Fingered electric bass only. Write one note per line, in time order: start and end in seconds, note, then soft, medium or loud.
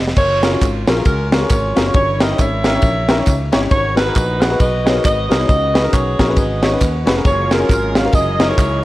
0.00 0.15 F1 medium
0.17 0.55 F#1 loud
0.62 0.84 G#1 medium
0.88 1.03 A#1 medium
1.05 1.43 C#2 loud
1.51 1.73 G#1 medium
1.77 1.92 F#1 medium
1.95 2.32 G1 loud
2.39 2.77 G#1 loud
2.83 3.21 A#1 medium
3.27 3.50 C#2 medium
3.55 3.70 G1 medium
3.72 4.09 G#1 loud
4.16 4.54 A#1 loud
4.60 4.98 B1 loud
5.05 5.27 G#1 medium
5.31 5.46 C2 medium
5.49 5.86 C#2 medium
5.93 6.15 B1 loud
6.20 6.35 A#1 medium
6.37 6.75 G#1 loud
6.82 7.04 D#2 medium
7.07 7.22 F1 medium
7.25 7.63 F#1 loud
7.69 8.07 G#1 medium
8.13 8.51 F#1 loud
8.58 8.84 C#2 loud